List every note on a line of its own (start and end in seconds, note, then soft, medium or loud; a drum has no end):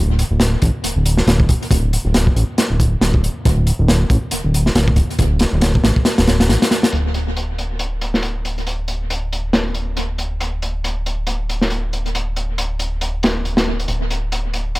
0.00 0.24 D1 loud
0.19 closed hi-hat medium
0.31 0.57 D1 loud
0.40 snare loud
0.40 closed hi-hat medium
0.62 0.70 A1 medium
0.62 kick medium
0.62 closed hi-hat medium
0.84 0.94 D1 soft
0.84 closed hi-hat medium
0.96 1.22 D1 medium
1.06 closed hi-hat medium
1.17 snare medium
1.27 1.54 D1 medium
1.27 snare loud
1.27 closed hi-hat medium
1.40 kick loud
1.49 kick medium
1.49 closed hi-hat medium
1.63 closed hi-hat soft
1.71 1.98 D1 loud
1.71 kick loud
1.71 closed hi-hat medium
1.93 closed hi-hat medium
2.05 2.31 D1 loud
2.14 snare loud
2.14 closed hi-hat medium
2.27 kick medium
2.36 2.44 A1 medium
2.36 closed hi-hat medium
2.58 snare medium
2.58 closed hi-hat medium
2.70 2.96 D1 medium
2.80 kick medium
2.80 closed hi-hat medium
3.01 3.28 D1 medium
3.01 snare loud
3.01 closed hi-hat medium
3.14 kick loud
3.24 closed hi-hat medium
3.45 3.72 D1 loud
3.45 kick loud
3.45 closed hi-hat medium
3.67 closed hi-hat medium
3.79 4.05 D1 loud
3.88 snare loud
3.88 closed hi-hat medium
4.10 4.18 A1 medium
4.10 kick loud
4.10 closed hi-hat medium
4.31 4.42 D1 soft
4.31 closed hi-hat medium
4.44 4.70 D1 medium
4.54 closed hi-hat medium
4.66 snare medium
4.75 5.02 D1 medium
4.75 snare loud
4.75 closed hi-hat medium
4.88 kick loud
4.96 kick medium
4.96 closed hi-hat medium
5.10 closed hi-hat soft
5.19 5.46 D1 loud
5.19 kick loud
5.19 closed hi-hat medium
5.39 snare loud
5.39 closed hi-hat medium
5.53 5.79 D1 loud
5.61 snare loud
5.61 closed hi-hat medium
5.75 kick medium
5.84 5.92 A1 medium
5.84 snare loud
5.84 closed hi-hat medium
5.96 kick medium
6.05 snare loud
6.05 closed hi-hat medium
6.18 6.51 D1 medium
6.18 snare loud
6.18 closed hi-hat medium
6.27 snare loud
6.27 closed hi-hat medium
6.40 snare loud
6.40 closed hi-hat medium
6.49 6.57 A1 medium
6.49 snare loud
6.49 closed hi-hat medium
6.62 snare loud
6.62 closed hi-hat medium
6.71 snare medium
6.71 closed hi-hat medium
6.83 snare loud
6.83 closed hi-hat medium
6.92 13.87 D1 medium
6.92 closed hi-hat medium
7.14 closed hi-hat medium
7.36 closed hi-hat medium
7.58 closed hi-hat medium
7.79 closed hi-hat medium
8.01 closed hi-hat medium
8.14 snare medium
8.23 closed hi-hat medium
8.45 closed hi-hat medium
8.58 closed hi-hat soft
8.67 closed hi-hat medium
8.88 closed hi-hat medium
9.10 closed hi-hat medium
9.33 closed hi-hat medium
9.53 snare loud
9.53 closed hi-hat medium
9.74 closed hi-hat medium
9.97 closed hi-hat medium
10.18 closed hi-hat medium
10.40 closed hi-hat medium
10.62 closed hi-hat medium
10.84 closed hi-hat medium
11.06 closed hi-hat medium
11.27 closed hi-hat medium
11.49 closed hi-hat medium
11.62 snare medium
11.70 closed hi-hat medium
11.93 closed hi-hat medium
12.06 closed hi-hat soft
12.15 closed hi-hat medium
12.36 closed hi-hat medium
12.58 closed hi-hat medium
12.79 closed hi-hat medium
13.01 closed hi-hat medium
13.23 snare loud
13.23 closed hi-hat medium
13.45 closed hi-hat medium
13.57 snare loud
13.57 closed hi-hat medium
13.80 closed hi-hat medium
13.88 14.79 D1 medium
13.88 closed hi-hat medium
14.10 closed hi-hat medium
14.32 closed hi-hat medium
14.54 closed hi-hat medium
14.75 closed hi-hat medium